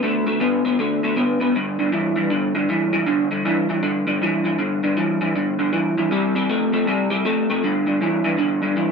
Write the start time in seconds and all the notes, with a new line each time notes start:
0.03 D3 A3
0.26 D3 A3
0.40 D3 B3
0.65 D3 B3
0.79 D3 A3
1.03 D3 A3
1.16 D3 B3
1.40 D3 B3
1.55 G2 D3
1.79 G2 D3
1.92 G2 E3
2.16 G2 E3
2.30 G2 D3
2.55 G2 D3
2.69 G2 E3
2.93 G2 E3
3.06 G2 D3
3.31 G2 D3
3.45 G2 E3
3.69 G2 E3
3.83 G2 D3
4.07 G2 D3
4.22 G2 E3
4.44 G2 E3
4.58 G2 D3
4.83 G2 D3
4.97 G2 E3
5.21 G2 E3
5.35 G2 D3
5.59 G2 D3
5.73 G2 E3
5.97 G2 E3
6.11 C3 G3
6.35 C3 G3
6.49 C3 A3
6.73 C3 A3
6.87 C3 G3
7.10 C3 G3
7.25 C3 A3
7.50 C3 A3
7.64 G2 D3
7.86 G2 D3
8.01 G2 E3
8.24 G2 E3
8.37 G2 D3
8.62 G2 D3
8.76 G2 E3